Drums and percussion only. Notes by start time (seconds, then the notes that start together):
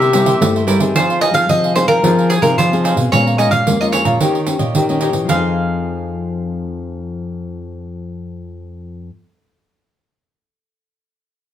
0.02 pandeiro
0.13 pandeiro
0.26 pandeiro
0.42 pandeiro
0.56 pandeiro
0.68 pandeiro
0.80 pandeiro
0.96 pandeiro
1.10 pandeiro
1.21 pandeiro
1.34 pandeiro
1.49 pandeiro
1.64 pandeiro
1.76 pandeiro
1.88 pandeiro
2.04 pandeiro
2.18 pandeiro
2.30 pandeiro
2.43 pandeiro
2.59 pandeiro
2.73 pandeiro
2.85 pandeiro
2.97 pandeiro
3.13 pandeiro
3.27 pandeiro
3.39 pandeiro
3.52 pandeiro
3.67 pandeiro
3.81 pandeiro
3.93 pandeiro
4.05 pandeiro
4.21 pandeiro
4.35 pandeiro
4.47 pandeiro
4.59 pandeiro
4.75 pandeiro
4.89 pandeiro
5.01 pandeiro
5.13 pandeiro
5.29 pandeiro